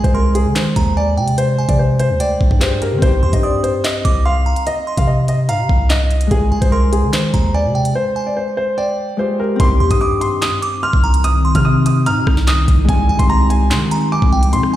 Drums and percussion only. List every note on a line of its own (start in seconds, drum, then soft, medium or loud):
0.04 kick medium
0.04 closed hi-hat medium
0.35 closed hi-hat medium
0.56 snare loud
0.56 clap medium
0.56 closed hi-hat medium
0.76 kick medium
0.76 closed hi-hat medium
1.28 closed hi-hat medium
1.38 closed hi-hat medium
1.69 kick medium
1.69 closed hi-hat medium
2.00 closed hi-hat medium
2.20 closed hi-hat medium
2.41 kick medium
2.51 kick medium
2.61 snare loud
2.61 clap loud
2.61 closed hi-hat medium
2.82 closed hi-hat medium
3.02 kick loud
3.02 closed hi-hat medium
3.33 kick medium
3.33 closed hi-hat medium
3.64 closed hi-hat medium
3.84 snare loud
3.84 clap medium
3.84 closed hi-hat medium
4.05 kick medium
4.05 closed hi-hat medium
4.56 closed hi-hat medium
4.67 closed hi-hat medium
4.97 kick medium
4.97 closed hi-hat medium
5.28 closed hi-hat medium
5.49 closed hi-hat medium
5.69 kick medium
5.90 snare loud
5.90 clap loud
5.90 closed hi-hat medium
6.11 closed hi-hat soft
6.21 closed hi-hat medium
6.31 kick loud
6.31 closed hi-hat medium
6.62 kick medium
6.62 closed hi-hat medium
6.93 closed hi-hat medium
7.13 snare loud
7.13 clap medium
7.13 closed hi-hat medium
7.34 kick medium
7.34 closed hi-hat medium
7.85 closed hi-hat medium
9.60 kick loud
9.60 closed hi-hat medium
9.91 kick medium
9.91 closed hi-hat medium
10.21 closed hi-hat medium
10.42 snare loud
10.42 clap medium
10.42 closed hi-hat medium
10.63 closed hi-hat medium
10.93 kick loud
11.14 closed hi-hat medium
11.24 closed hi-hat medium
11.55 kick medium
11.55 closed hi-hat medium
11.86 closed hi-hat medium
12.06 closed hi-hat medium
12.27 kick medium
12.27 cross-stick loud
12.37 snare medium
12.47 snare loud
12.47 clap loud
12.47 closed hi-hat medium
12.68 kick loud
12.68 closed hi-hat medium
12.89 kick loud
12.89 closed hi-hat medium
13.19 kick medium
13.19 closed hi-hat medium
13.50 closed hi-hat medium
13.71 snare loud
13.71 clap medium
13.71 closed hi-hat medium
13.91 closed hi-hat medium
14.22 kick loud
14.43 closed hi-hat medium
14.53 closed hi-hat medium
14.63 cross-stick medium